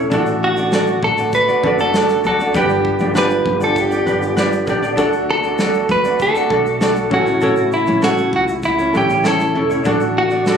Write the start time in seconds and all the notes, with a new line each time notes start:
Already playing: A3 E4 C#5
0.00 C#4
0.10 A1 D3 D4 E4 F#4 A4 D5, kick, shaker
0.18 F#4
0.26 shaker
0.44 F#4
0.57 F#4 D5, shaker
0.61 D4
0.72 D4 F#4 A4 D5, snare, shaker
0.87 shaker
1.03 A1 A4, kick
1.18 D4 F#4 D5, shaker
1.33 B4, kick, shaker
1.48 D4 F#4 D5, shaker
1.63 F#1 D4 F#4 A4 D5, kick
1.79 D4 F#4 A4 D5, shaker
1.94 D4 F#4 A4 D5, snare, shaker
2.09 snare, shaker
2.24 D2 D4 F#4 A4 D5, shaker
2.40 D4 F#4 D5, shaker
2.53 G1 B3 D4 G4 B4, kick, shaker
2.57 G4 B4 D5
2.69 shaker
2.85 kick
2.99 G1 G4 D5, shaker
3.03 D4
3.15 D4 G4 B4 D5, snare, shaker
3.30 shaker
3.46 G1, kick
3.60 D4 G4 A4 D5, shaker
3.76 G4, kick, shaker
3.90 D4 G4 D5, shaker
4.06 G1 D4 G4 B4 D5, shaker
4.22 shaker
4.37 D4 G4 B4 D5, snare, shaker
4.53 shaker
4.67 A1 D4 G4 B4 D5, kick, shaker
4.82 D4 G4 D5, shaker
4.96 D2 A3 D4 F#4 A4 D5, kick, shaker
5.13 shaker
5.31 A4
5.43 D4 F#4 D5, shaker
5.58 D4 F#4 A4 D5, snare, shaker
5.74 shaker
5.89 D2 B4, kick, shaker
6.04 D4 F#4 D5, shaker
6.20 A4, kick, shaker
6.35 D4 F#4 D5, shaker
6.50 B1 D4 F#4 A4 D5, kick
6.66 shaker
6.81 D4 F#4 A4 D5, snare, shaker
6.96 shaker
7.10 A1 C#3 C#4 E4 F#4 A4 C#5, kick
7.14 G#4
7.21 A4
7.25 C#4 E4 C#5, shaker
7.41 A1 C#4 E4 A4 C#5, shaker
7.56 shaker
7.72 E4, shaker
7.87 A1 C#4 E4 C#5, shaker
8.02 C#4 E4 F#4 A4 C#5, snare, shaker
8.17 shaker
8.33 C#2 F#4, kick
8.48 shaker
8.63 E4, kick, shaker
8.78 C#4 E4 C#5, shaker
8.93 A1 C#4 E4 A4 C#5, shaker
8.97 G4
9.08 C#4 E4 C#5, shaker
9.24 C#4 E4 A4 C#5, snare, shaker
9.39 snare, shaker
9.55 E1 C#4 E4 A4 C#5
9.70 C#4 E4 C#5, shaker
9.84 A1 D3 D4 F#4 A4, kick, shaker
9.88 F#4 A4 D5
10.00 shaker
10.18 F#4
10.30 D4 F#4 D5, shaker
10.46 D4 F#4 A4 D5, snare, shaker